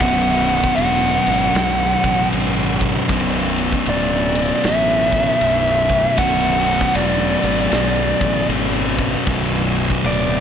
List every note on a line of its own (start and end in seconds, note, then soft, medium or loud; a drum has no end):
0.00 0.64 B0 loud
0.00 3.08 B1 loud
0.00 3.08 F#2 loud
0.00 3.11 B2 loud
0.00 10.40 D3 medium
0.00 10.40 F#3 medium
0.00 10.40 B3 medium
0.00 0.75 F#5 loud
0.00 kick loud
0.00 ride loud
0.49 ride medium
0.64 kick medium
0.76 1.18 E1 medium
0.76 2.28 F#5 loud
0.76 ride medium
1.27 1.50 G#1 medium
1.27 ride medium
1.55 1.95 B1 medium
1.55 snare loud
1.55 ride medium
2.04 2.27 A1 medium
2.04 kick medium
2.04 ride medium
2.32 2.96 G#1 medium
2.32 ride medium
2.81 kick medium
2.81 ride medium
3.08 3.73 B0 medium
3.08 6.17 B1 medium
3.08 6.17 F#2 loud
3.08 6.20 B2 loud
3.08 kick loud
3.08 ride medium
3.58 ride medium
3.72 kick medium
3.86 4.50 D1 medium
3.86 4.68 D5 medium
3.86 ride medium
4.35 ride medium
4.64 5.28 A1 medium
4.64 6.18 E5 loud
4.64 snare loud
4.64 ride medium
5.12 kick medium
5.12 ride medium
5.41 6.05 B0 medium
5.41 ride medium
5.89 kick medium
5.89 ride medium
6.17 6.82 B0 medium
6.17 9.26 B1 medium
6.17 9.26 F#2 medium
6.17 9.29 B2 loud
6.17 6.98 F#5 loud
6.17 kick loud
6.17 ride medium
6.67 ride medium
6.81 kick medium
6.81 snare soft
6.95 7.35 E1 medium
6.95 8.46 D5 medium
6.95 ride medium
7.43 7.67 G#1 medium
7.43 ride medium
7.72 8.12 B1 medium
7.72 snare loud
7.72 ride loud
8.21 8.45 A1 medium
8.21 kick medium
8.21 ride medium
8.49 9.13 G#1 medium
8.49 ride medium
8.98 kick medium
8.98 ride medium
9.26 9.90 B0 medium
9.26 10.40 B1 medium
9.26 10.40 F#2 loud
9.26 10.40 B2 loud
9.26 kick loud
9.26 ride medium
9.76 ride medium
9.90 kick medium
10.04 10.40 D1 medium
10.04 10.40 D5 loud
10.04 ride medium